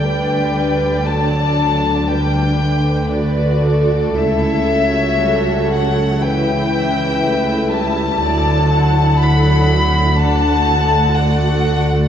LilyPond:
<<
  \new Staff \with { instrumentName = "Violin section" } { \time 4/4 \key d \major \tempo 4 = 60 g''4 a''4 g''4 d''4 | e''4. fis''8 g''4. a''8~ | a''4 b''4 a''4 fis''4 | }
  \new Staff \with { instrumentName = "Violin section" } { \time 4/4 \key d \major << { d''2 b'2 | cis''2 e''2 | d''8 fis''4. fis''4 d''4 | } \\ { b'4 a'4 b'4 b'8 a'8~ | a'4 a'4 b'2 | a'4 a'8 fis'8 fis'4 a'4 | } >> }
  \new Staff \with { instrumentName = "Viola section" } { \time 4/4 \key d \major << { d'4 d'2 fis'4 | e'8 fis'4. e'2~ | e'2 d'8 e'8 fis'4 | } \\ { g4 fis8 fis8 g8 a4.~ | a4 g8 fis8 e4 a8 g8 | fis4 fis4 a4 a4 | } >> }
  \new Staff \with { instrumentName = "Cello section" } { \clef bass \time 4/4 \key d \major d1 | cis1 | d1 | }
  \new Staff \with { instrumentName = "Double bass section" } { \clef bass \time 4/4 \key d \major d,1 | cis,1 | d,1 | }
>>